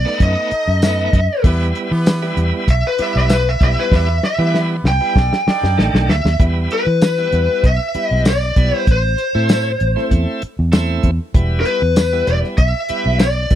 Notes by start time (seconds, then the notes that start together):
Already playing: D5
0.05 A3 B3 D#4, snare
0.20 F#2 D#5, kick, closed hi-hat
0.51 D#4 A4 D#5, muted fingered electric bass stroke, closed hi-hat
0.68 F#2
0.82 A3 B3 D#4, snare, closed hi-hat, tambourine
1.13 F#2, kick, closed hi-hat
1.43 E2 G3 B3 E4 G4 B4, kick, closed hi-hat
1.75 closed hi-hat
1.90 E3 B3 E4 G4 B4
2.06 snare, closed hi-hat, tambourine
2.22 G3 B3 E4
2.37 E2, closed hi-hat
2.68 B1 E5, kick, closed hi-hat
2.87 B4
2.98 G3 B3 E4 G4 B4, muted fingered electric bass stroke, closed hi-hat
3.02 E5
3.16 B1 E5
3.30 B4, snare, closed hi-hat, tambourine
3.49 E5
3.60 B1 G3 B3 E4 E5, kick, closed hi-hat
3.80 B4
3.91 E2 B3 E4 G4 B4, kick, snare
3.95 E5
4.23 E5, snare
4.38 E3 G3 B3 E4 G4 B4
4.54 snare
4.84 C2 G5, snare
5.01 G3 B3 E4
5.15 B1 D4 D#4 A4 D5, kick, snare
5.33 snare
5.46 D4 D#4 A4 D5, muted fingered electric bass stroke, snare
5.63 F#2, snare
5.78 A1 D#3 A3 D4, snare
5.94 B1, snare
6.08 D2 E5, snare
6.25 D#2, snare
6.40 E2 G3 B3 E4, kick, closed hi-hat
6.71 B4, closed hi-hat
6.87 E3
7.02 snare, closed hi-hat, tambourine
7.18 G3 B3 E4
7.32 E2, closed hi-hat
7.64 B1 E5, kick, closed hi-hat
7.94 G3 B3 E4, muted fingered electric bass stroke, closed hi-hat
8.06 D#5
8.11 B1
8.25 D5, snare, closed hi-hat, tambourine
8.56 B1 G3 B3 E4, kick, closed hi-hat
8.77 C5
8.87 A1 C5, kick, closed hi-hat
9.18 closed hi-hat
9.35 A2 A3 C4 E4
9.49 snare, closed hi-hat, tambourine
9.80 A1, closed hi-hat
9.96 A3 C4 E4, snare
10.11 E2, kick, closed hi-hat
10.42 muted fingered electric bass stroke, closed hi-hat
10.59 E2
10.72 A3 C4 E4, snare, closed hi-hat, tambourine
11.03 E2, kick, closed hi-hat
11.34 E1 G3 B3 E4, kick, closed hi-hat
11.61 A#4
11.65 B4, closed hi-hat
11.82 E2
11.96 snare, closed hi-hat, tambourine
12.13 G3 B3 E4
12.27 E1 D5, closed hi-hat
12.44 snare
12.57 B1 E5, kick, closed hi-hat
12.89 G3 B3 E4, muted fingered electric bass stroke, closed hi-hat
13.06 B1
13.19 D5, snare, closed hi-hat, tambourine
13.50 B1 G3 B3 E4, kick, closed hi-hat